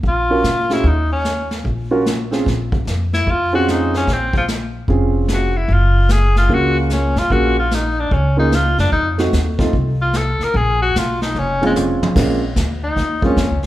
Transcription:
0.03 A#1, brush sweep, kick
0.08 F4
0.30 C#4 F4 F#4 A#4
0.44 A#2, snare, hi-hat pedal
0.70 C#4 F4 F#4 G#4, snare
0.74 E4
0.84 D#2, brush sweep, kick
0.88 D#4
1.12 C#4
1.25 snare, hi-hat pedal
1.51 snare
1.64 A#1, brush sweep, kick
1.91 C#4 F4 F#4 A#4
2.06 snare, hi-hat pedal
2.31 C4 C#4 F4 G#4, snare
2.46 A#1, brush sweep, kick, snare
2.72 kick
2.85 F2, snare, hi-hat pedal
3.13 E4, snare
3.27 F2, brush sweep, kick
3.31 F4
3.53 C4 C#4 F4 F#4 G#4
3.68 D#4, snare, hi-hat pedal
3.94 C#4, snare
4.07 A#1, brush sweep, kick, snare
4.13 C4
4.33 F3, kick
4.48 snare, hi-hat pedal
4.88 F1 C4 C#4 F4 G#4, brush sweep, kick
5.28 snare, hi-hat pedal
5.34 F#4
5.57 E4
5.68 F#1, brush sweep, kick
5.73 F4
6.09 G#4, snare, hi-hat pedal
6.36 F4, snare
6.49 C#2 A#3 C#4 F4 G#4, brush sweep, kick
6.54 F#4
6.80 A#3
6.90 C#4, snare, hi-hat pedal
7.16 G2 F4, snare
7.30 A#1 A#3 C#4 F4 F#4 G#4, brush sweep, kick
7.59 F4
7.71 D#4, snare, hi-hat pedal
8.00 D4
8.11 C#2 C#4, brush sweep, kick
8.37 A#3 C#4 D#4 F4 G#4
8.52 F4, snare, hi-hat pedal
8.78 F#2 D4, snare
8.92 F2 D#4, brush sweep, kick
9.18 A3 C4 D#4 F#4, snare
9.33 D#2, snare, hi-hat pedal
9.58 A3 C4 D#4 F4, kick, snare
9.73 C2, brush sweep, kick
10.01 F4
10.13 A4, snare, hi-hat pedal
10.40 muted upright bass stroke, snare
10.44 A#4
10.54 A#1 G#4, brush sweep, kick
10.82 F#4
10.95 B1 F4, snare, hi-hat pedal
11.22 D#4, snare
11.35 F1, high tom
11.39 C#4
11.62 G#3 C4 C#4 F4, high tom
11.66 G#3
11.76 hi-hat pedal, mid tom
12.01 muted upright bass stroke, mid tom
12.15 A#1 G#3 A#3 C4 C#4 F4, brush sweep, kick, snare, crash
12.56 D2, kick, snare, hi-hat pedal
12.84 D#4
12.96 D#2, brush sweep, kick, snare
13.22 G#3 A#3 C4 C#4 F4, kick
13.36 F2, kick, snare, hi-hat pedal
13.51 C#2
13.63 snare

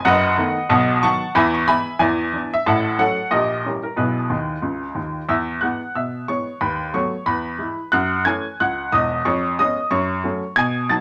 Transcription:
0.05 F#1 F#2 B4 D#5 F#5
0.38 D#3 A3 B3
0.69 B1 B2 D#5 F#5 A5
1.03 D#3 F#3 B3 F#5 A5 C#6
1.35 E2 E3 E5 G#5 B5
1.54 C#6
1.67 E3 G#3 B3 E5 G#5 B5
1.99 E2 E3 D5 E5 G#5
2.33 E3 B3 D4
2.54 E5
2.66 A1 A2 E5 F#5 A5
2.98 F#3 A3 C#4 A4 C#5 F#5
3.31 A#1 A#2 G4 A#4 D#5
3.65 E3 G3 C#4 G4 A#4 C#5
3.83 A#4
3.96 B1 B2 E4 G#4 B4
4.30 D#2 D#3
4.62 C#2 C#3
4.95 D#2 D#3
5.29 E2 E5 E6
5.61 E3 G#3 B3 F#5 F#6
5.95 B2 E5 E6
6.28 E3 G#3 B3 C#5 C#6
6.61 D#2 B4 B5
6.94 F#3 A3 B3 C#5 C#6
7.26 E2 B4 B5
7.58 E3 G#3 E4
7.92 F#2 F#5 F#6
8.25 E3 A3 C#4 G#5 G#6
8.60 C#2 F#5 F#6
8.92 E1 E2 D#5 D#6
9.25 F2 C#5 C#6
9.59 G#3 B3 C#4 D#5 D#6
9.91 F#2 C#5 C#6
10.24 F#3 A3 C#4
10.56 B2 G#5 G#6
10.89 F#3 B3 D#4 A5 A6

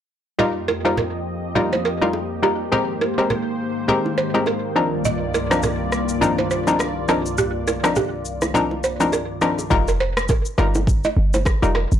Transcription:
0.39 F2 F3 G3 A#3 D#4 F4 G4 A#4 D#5, low conga
0.68 A#4, low bongo
0.85 G3 D#4 F4 A#4 C5
0.97 A#4, high bongo, low conga
1.55 G3 D#4 F4 A#4, low conga
1.73 C5, low bongo
1.85 A#4
2.02 G3 D#4 F4 A#4, low bongo
2.13 high bongo
2.43 G3 D#4 F4 G4 A#4
2.72 G#2 D#3 G#3 C4 G4 A#4 C5, low conga
3.01 A#4, low bongo
3.18 G#3 C4 G4 A#4 C5
3.30 A#4, high bongo, low conga
3.88 G#3 C4 G4 A#4, low conga
4.06 low bongo
4.18 C5
4.34 G#3 C4 G4 A#4, low bongo
4.46 A#4, high bongo
4.76 C2 G2 F3 C4 D4 D#4 F4 A#4 D5
5.05 D#5, low conga, shaker
5.34 A#4, low bongo, shaker
5.51 F3 C4 D4 D#4 A#4 C5, cross-stick, shaker
5.63 A#4, high bongo, low conga, shaker
5.92 cross-stick, shaker
6.09 shaker
6.21 F3 C4 D4 D#4 A#4, low conga, shaker
6.38 C5, low bongo
6.51 C5, shaker
6.67 F3 C4 D4 D#4 A#4, low bongo, shaker
6.79 cross-stick, high bongo, shaker
7.08 F3 C4 D4 D#4 A#4, cross-stick, shaker
7.26 shaker
7.38 G4, low conga, shaker
7.67 A#4, low bongo, shaker
7.84 F3 C4 D4 D#4 A#4, cross-stick, shaker
7.96 G4, high bongo, low conga, shaker
8.25 shaker
8.42 cross-stick, high bongo, low bongo, shaker
8.54 F3 C4 D4 D#4 A#4, low conga, shaker
8.71 low bongo
8.84 C5, shaker
9.00 F3 C4 D4 D#4 A#4, low bongo, shaker
9.12 A#4, high bongo, shaker
9.41 F3 C4 D4 D#4 A#4, cross-stick, shaker
9.58 high bongo, shaker
9.70 F1 G3 D#4 F4 A#4, kick, low conga, shaker
9.88 A#4, shaker
10.00 C5
10.17 cross-stick, shaker
10.29 A#4, kick, high bongo, low conga, shaker
10.45 shaker
10.58 G1 G3 D#4 F4 A#4, cross-stick, shaker
10.75 high bongo, low bongo, shaker
10.87 kick, low conga, shaker
11.04 D#5, low bongo, shaker
11.17 G1
11.34 C5, low bongo, shaker
11.45 kick, cross-stick, high bongo, shaker
11.62 F1 G3 D#4 F4 A#4, shaker
11.75 A#4, cross-stick
11.92 G1, shaker

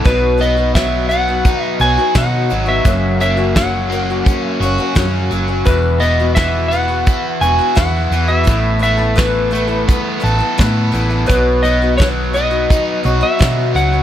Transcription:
0.04 B1 B2 F#3 B3 D#4 F#4 B4, kick, closed hi-hat
0.38 F#3 B3 D#4 F#4 D#5, closed hi-hat
0.57 B3 D#4 F#4
0.75 B2 F#3 B3 F#4 E5, kick, snare, closed hi-hat
1.09 F#3 B3 D#4 F#4 F#5, closed hi-hat
1.28 B3 D#4 F#4
1.45 D#4, kick, closed hi-hat
1.63 E5
1.80 B1 F#3 B3 D#4 F#4 G#5, closed hi-hat
1.98 B3 D#4 F#4
2.15 B2 F#3 B3 D#4 F#4 F#5, kick, snare, closed hi-hat
2.50 G#1 F#3 B3 D#4 F#4, closed hi-hat
2.66 B3 D#4 F#4 E5
2.84 F#1 F#2 C#3 F#3 A#3 C#4 F#4, kick, closed hi-hat
3.20 F#3 A#3 C#4 F#4 E5, closed hi-hat
3.37 F#3 A#3 C#4 F#4
3.56 F#2 C#3 F#3 A#3 C#4 F#4 F#5, kick, snare, closed hi-hat
3.92 F#3 A#3 C#4 F#4, closed hi-hat
4.10 F#3 A#3 C#4 F#4
4.25 C#4, kick, closed hi-hat
4.48 E5
4.60 F#1 F#3 A#3 C#4 F#4, closed hi-hat
4.78 F#3 A#3 C#4 F#4
4.95 F#2 C#3 F#3 A#3 C#4 F#4, kick, snare, closed hi-hat
5.31 F#1 F#3 A#3 C#4 F#4, closed hi-hat
5.48 F#3 A#3 C#4 F#4
5.65 E1 E2 E3 B3 E4 F#4 B4, kick, closed hi-hat
6.00 E3 B3 E4 F#4 D#5, closed hi-hat
6.20 B3 E4 F#4
6.35 E3 B3 E4 F#4 E5, kick, snare, closed hi-hat
6.68 E3 F#5, closed hi-hat
6.73 B3 E4 F#4
6.88 B3 E4 F#4
7.06 E4, kick, closed hi-hat
7.41 E1 E3 B3 E4 F#4 G#5, closed hi-hat
7.59 B3 E4 F#4
7.75 E2 E3 B3 E4 F#4 F#5, kick, snare, closed hi-hat
8.11 E2 E3 B3 E4 F#4, closed hi-hat
8.28 B3 E4 F#4 E5
8.44 A1 A3 B3 E4 A4, kick, closed hi-hat
8.49 A2
8.79 A3 B3 E4 A4 E5, closed hi-hat
8.84 A3
8.97 B3 E4 A4
9.15 E3 A3 B3 E4 A4 B4, kick, snare, closed hi-hat
9.51 A3 B3 E4 A4, closed hi-hat
9.68 B3 E4 A4
9.88 B3, kick, closed hi-hat
10.20 A1 A3 B3 E4 A4
10.25 closed hi-hat
10.39 B3 E4 A4
10.58 A2 A3 B3 E4 A4, kick, snare, closed hi-hat
10.92 A1 E3 A3 B3 E4 A4, closed hi-hat
11.10 B3 E4 A4
11.26 B1 B2 F#3 B3 D#4 F#4 B4, kick, closed hi-hat
11.63 F#3 B3 D#4 F#4 D#5, closed hi-hat
11.82 B3 D#4 F#4
11.97 B2 F#3 B3 D#4 F#4 C#5, kick, snare, closed hi-hat
12.33 F#3 B3 D#4 F#4 D#5, closed hi-hat
12.51 B3 D#4 F#4
12.70 D#4, kick, closed hi-hat
13.03 B1 F#3 B3 D#4 F#4, closed hi-hat
13.21 B3 D#4 F#4 E5
13.39 B2 F#3 B3 D#4 F#4, kick, snare, closed hi-hat
13.74 C#2 F#3 B3 D#4 F#4 F#5, closed hi-hat
13.93 B3 D#4 F#4

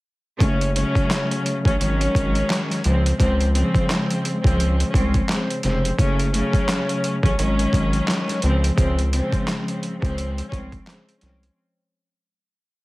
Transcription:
0.39 F#1 C#3 F#3 A3 C#4, kick, closed hi-hat
0.61 closed hi-hat
0.75 C#3 F#3 A3 C#4, closed hi-hat
0.95 kick, closed hi-hat
1.11 snare, clap, closed hi-hat
1.31 closed hi-hat
1.46 closed hi-hat
1.65 A1 C#3 F#3 A3 C#4, kick, closed hi-hat
1.79 G#1 D#3 F#3 G#3 C#4, closed hi-hat
2.01 closed hi-hat
2.15 G#1, kick, closed hi-hat
2.35 closed hi-hat
2.50 snare, clap, closed hi-hat
2.70 snare, closed hi-hat
2.84 C#2 C#3 F3 G#3 C4, closed hi-hat
3.06 closed hi-hat
3.17 C#2 C#3 F3 G#3 C4, kick, closed hi-hat
3.41 closed hi-hat
3.54 C#3 F3 G#3 C4, closed hi-hat
3.75 kick, closed hi-hat
3.90 snare, clap, closed hi-hat
4.10 closed hi-hat
4.25 closed hi-hat
4.42 C#2 C#3 F3 G#3 C4, kick
4.47 closed hi-hat
4.60 closed hi-hat
4.80 closed hi-hat
4.92 C2 F3 G#3 C4 C#4, kick, closed hi-hat
5.14 kick, closed hi-hat
5.29 C#3 F3 G#3 C4, snare, clap, closed hi-hat
5.50 closed hi-hat
5.63 F1 C#3 F3 G#3 C4, snare, closed hi-hat
5.85 closed hi-hat
5.97 F#1 C#3 F#3 A3 C#4, kick, closed hi-hat
6.19 closed hi-hat
6.33 C#3 F#3 A3 C#4, closed hi-hat
6.53 kick, closed hi-hat
6.69 snare, clap, closed hi-hat
6.89 closed hi-hat
7.04 closed hi-hat
7.23 A1 C#3 F#3 A3 C#4, kick, closed hi-hat
7.37 G#1 D#3 F#3 G#3 C#4, closed hi-hat
7.59 closed hi-hat
7.73 G#1, kick, closed hi-hat
7.93 closed hi-hat
8.08 snare, clap, closed hi-hat
8.28 snare, closed hi-hat
8.42 C#2 C#3 F3 G#3 C4, closed hi-hat
8.64 closed hi-hat
8.75 C#2 C#3 F3 G#3 C4, kick, closed hi-hat
8.99 closed hi-hat
9.12 C#3 F3 G#3 C4, closed hi-hat
9.32 kick, closed hi-hat
9.48 snare, clap, closed hi-hat
9.68 closed hi-hat
9.83 closed hi-hat
10.00 C#2 C#3 F3 G#3 C4, kick
10.05 closed hi-hat
10.18 closed hi-hat
10.38 closed hi-hat
10.50 C2 F3 G#3 C4 C#4, kick, closed hi-hat
10.72 kick, closed hi-hat
10.87 C#3 F3 G#3 C4, snare, clap, closed hi-hat
11.09 closed hi-hat
11.21 C2 F3 G#3 C4 C#4, snare, closed hi-hat
11.43 closed hi-hat

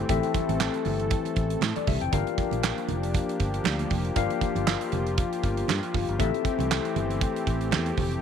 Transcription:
Already playing: E3 A3 C4
0.09 A1 C4 E4 G4 A4 E5, kick, closed hi-hat, muted conga, low conga
0.23 closed hi-hat, muted conga
0.34 kick, closed hi-hat, high conga
0.49 A1, closed hi-hat, high conga
0.60 snare, clap
0.74 closed hi-hat, muted conga
0.85 G1, open hi-hat, high conga, low conga
1.00 closed hi-hat
1.11 kick, closed hi-hat, muted conga
1.25 closed hi-hat, muted conga
1.36 A1, kick, closed hi-hat
1.50 closed hi-hat
1.61 A2, snare, clap, muted conga, high conga
1.76 D5, closed hi-hat, muted conga, high conga
1.87 C2 G4 E5, kick, open hi-hat, low conga
2.01 F1 G5, closed hi-hat
2.12 G1 F3 A#3 D4 F4 G4 A#4 F5, kick, closed hi-hat, low conga
2.27 closed hi-hat, muted conga
2.38 kick, closed hi-hat, high conga
2.51 A#1, closed hi-hat, high conga
2.63 snare, clap, muted conga
2.78 closed hi-hat, muted conga
2.88 F1, closed hi-hat, high conga, low conga
3.03 closed hi-hat
3.14 kick, closed hi-hat, muted conga
3.29 closed hi-hat
3.40 G1, kick, closed hi-hat
3.54 closed hi-hat
3.64 D2, snare, clap, high conga
3.79 closed hi-hat, muted conga
3.90 F1, kick, open hi-hat, low conga
4.05 closed hi-hat
4.16 G1 D4 F4 G4 A#4 F5, kick, closed hi-hat, muted conga, low conga
4.30 closed hi-hat, muted conga
4.41 kick, closed hi-hat, high conga
4.55 G1, closed hi-hat, high conga
4.67 snare, clap
4.81 closed hi-hat, muted conga
4.92 F1, closed hi-hat, high conga, low conga
5.07 closed hi-hat
5.18 kick, closed hi-hat, muted conga
5.33 closed hi-hat
5.43 G1, kick, closed hi-hat
5.57 closed hi-hat
5.68 G2, snare, clap, muted conga, high conga
5.83 closed hi-hat
5.94 G1, kick, open hi-hat, low conga
6.08 G1, closed hi-hat
6.19 A1 E3 A3 C4 E4 G4 A4 E5, kick, closed hi-hat, muted conga, low conga
6.34 closed hi-hat
6.45 kick, closed hi-hat, high conga
6.59 C2, closed hi-hat, high conga
6.71 snare, clap
6.85 closed hi-hat, muted conga
6.96 G1, closed hi-hat, high conga, low conga
7.10 closed hi-hat
7.21 kick, closed hi-hat
7.36 closed hi-hat
7.47 A1, kick, closed hi-hat
7.61 closed hi-hat
7.71 E2, snare, clap, muted conga, high conga
7.86 closed hi-hat
7.97 F1, kick, open hi-hat, low conga
8.11 closed hi-hat

